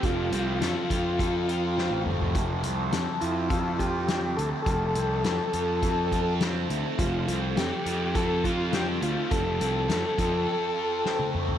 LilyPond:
<<
  \new Staff \with { instrumentName = "Transistor combo organ" } { \time 4/4 \key f \lydian \tempo 4 = 103 f'2.~ f'8 r8 | r4. e'8 f'8 g'4 a'8 | a'2. r4 | f'8 f'8 g'4 a'8 f'8 g'8 f'8 |
a'2.~ a'8 r8 | }
  \new Staff \with { instrumentName = "Distorted electric guitar" } { \time 4/4 \key f \lydian <f a c' f' a'>8 c'8 a'8 f'8 a'8 f'8 c'8 a8 | f8 c'8 a'8 f'8 a'8 f'8 c'8 a8 | f8 c'8 a'8 f'8 a'8 f'8 c'8 a8 | f8 c'8 a'8 f'8 a'8 f'8 c'8 a8 |
f8 c'8 a'8 f'8 a'8 f'8 c'8 a8 | }
  \new Staff \with { instrumentName = "Picked electric bass" } { \clef bass \time 4/4 \key f \lydian f,,8 c,8 f,16 r16 f,4.~ f,16 a,,16 g,,16 f,,16 | f,,8 c,8 f,16 r16 f,2 d,16 r16 | f,,8 c,8 f,16 r16 f,2 d,16 r16 | f,,8 c,8 f,16 r16 f,2 d,16 r16 |
f,,8 c,8 f,16 r16 f,8 r2 | }
  \new DrumStaff \with { instrumentName = "Drums" } \drummode { \time 4/4 <hh bd>8 hh8 <hh sn>8 <hh bd>8 <hh bd>8 hh8 sn8 toml16 tomfh16 | <hh bd>8 hh8 <hh sn>8 hh8 <hh bd>8 <hh bd>8 <hh sn>8 hh8 | <hh bd>8 hh8 <hh sn>8 hh8 <hh bd>8 <hh bd>8 <hh sn>8 hh8 | <hh bd>8 hh8 <hh sn>8 hh8 <hh bd>8 <hh bd>8 <hh sn>8 hh8 |
<hh bd>8 hh8 <hh sn>8 <hh bd>8 r4 sn16 tommh16 toml16 tomfh16 | }
>>